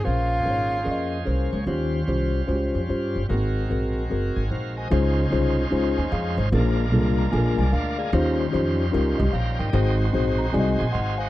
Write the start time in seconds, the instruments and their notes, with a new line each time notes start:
0.04 upright bass A#1, tine electric piano A#2 C4 G#4 A#4 C5, tonewheel organ A#3 C#4 G#4 C5, tenor saxophone F4
0.09 tine electric piano C#4
0.43 upright bass G#1, tine electric piano C#4 G#4 A#4 C5
0.50 tine electric piano C#5
0.84 upright bass F2, tine electric piano C#4 G#4 A#4 D5
0.91 tine electric piano D#5
1.12 tonewheel organ G#5
1.25 upright bass C2, tine electric piano C#4 G#4 A#4 C5, tonewheel organ F5
1.53 upright bass C#2, tonewheel organ C#5
1.67 upright bass D#2, tine electric piano D#3 C#4 F4 G4 C5, tonewheel organ F#3 C#4 F4 C5
1.72 tonewheel organ G3
2.07 upright bass C2, tine electric piano C#4 F4 G4 C5
2.47 upright bass C#2, tine electric piano C#4 F4 F#4 C5
2.53 tine electric piano G4
2.75 upright bass F2
2.89 upright bass G2, tine electric piano C#4 F4 G4 C5
3.16 upright bass G1
3.29 upright bass G#1, tine electric piano G#2 A#3 F#4 G#4 A#4, tonewheel organ G#3 C4 F#4 A#4
3.34 tine electric piano C4
3.69 upright bass A#1, tine electric piano C4 F#4 G#4 A#4
4.10 upright bass F#1, tine electric piano C4 F#4 G#4 A#4
4.36 upright bass G#1, tonewheel organ G#5
4.51 upright bass A#1, tine electric piano D#4 C5, tonewheel organ F5
4.77 tine electric piano C5 G#5, tonewheel organ D#5
4.91 upright bass C#2, tine electric piano C#3 C#4 D#4 F4 G#4 C5, tonewheel organ G#3 C#4 D#4 F4 C5
5.31 upright bass C2, tine electric piano C#4 D#4 F4 G#4 C5
5.71 upright bass C#2, tine electric piano C#4 D#4 F4 G#4 C5
5.98 upright bass D#2, tine electric piano C5 G#5
6.12 upright bass F2, tine electric piano G#4 F5
6.37 upright bass G#1, tine electric piano D#4 C5
6.52 upright bass A#1, tine electric piano A#2 A#3 C#4 F4 G#4 A#4, tonewheel organ G#3 A#3 D4 F4 A4
6.57 tine electric piano D4, tonewheel organ A#4
6.92 upright bass C2, tine electric piano A#3 D4 F4 G#4 A4
6.98 tine electric piano A#4
7.18 tine electric piano A#5
7.31 upright bass A#1, tine electric piano A#3 D4 F4 G#4 A4 G#5
7.38 tine electric piano A#4
7.58 upright bass C2, tonewheel organ D5, tine electric piano G#5
7.72 upright bass D2, tine electric piano D4 A#4 F5, tonewheel organ A#4 D5 F5
7.98 tine electric piano G#4 D5 F5, tonewheel organ A#4 G#5
8.12 upright bass D#2, tine electric piano D#3 C#4 D#4 F4 G4 C5, tonewheel organ F#3 C#4 D#4 F4 C5
8.18 tonewheel organ G3
8.52 upright bass F2, tine electric piano C#4 D#4 F4 G4 C5
8.91 upright bass C#2, tine electric piano C#4 D#4 F4 G4 A#4
9.18 upright bass C2, tine electric piano G4 D#5
9.33 upright bass A#1, tine electric piano F5, tonewheel organ G5 A#5
9.59 upright bass G#1, tine electric piano A#4 G5, tonewheel organ D#5 G5
9.73 upright bass G#1, tine electric piano G#2 C4 D#4 F#4 G#4 C5, tonewheel organ G#3 C4 D#4 F#4 A#4
9.78 tonewheel organ C5
10.13 upright bass A#1, tine electric piano C4 D#4 F#4 G#4 C5
10.38 tine electric piano A#5
10.53 upright bass C2, tine electric piano C4 D#4 F#4 G#4 D5 G#5
10.59 tine electric piano D#5
10.79 upright bass A#1, tonewheel organ G#5 C6
10.92 upright bass G#1, tine electric piano D#5 F#5 C6, tonewheel organ F5 G#5
11.18 tine electric piano C5 F5 G#5, tonewheel organ D#5 F#5